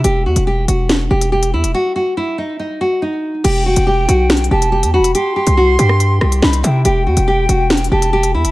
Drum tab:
CC |------------------------------------------------|------------------------------------------------|x-----------------------------------------------|------------------------------------------------|
HH |x--------x--------x-----x--------x-----x-----x--|------------------------------------------------|x--------x--------x-----x-x-x----x-----x-----x--|x--------x--------x-----x--------x-----x--x-----|
SD |------------------------o-----------------------|------------------------------------------------|------------------------o-----------------------|---------------------r--------r-----o-----------|

CC |------------------------------------------------|
HH |x--------x--------x-----x-x-x----x-----x-----x--|
SD |------------------------o-----------------------|